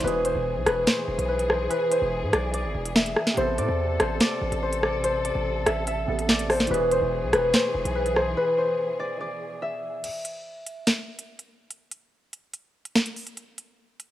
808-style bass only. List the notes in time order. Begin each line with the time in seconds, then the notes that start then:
0.04 E1
0.35 E1
0.56 B1
0.66 E1
1.08 E1
1.18 B1
2.02 E1
2.23 G#2
2.33 B1
2.64 G#1
2.75 E1
3.37 A1
3.58 A2
3.69 E2
4.00 A1
4.42 A1
4.52 A1
5.35 A1
5.66 A1
6.08 A1
6.71 E1
7.02 E1
7.23 B1
7.33 E1
7.75 E1
7.85 B1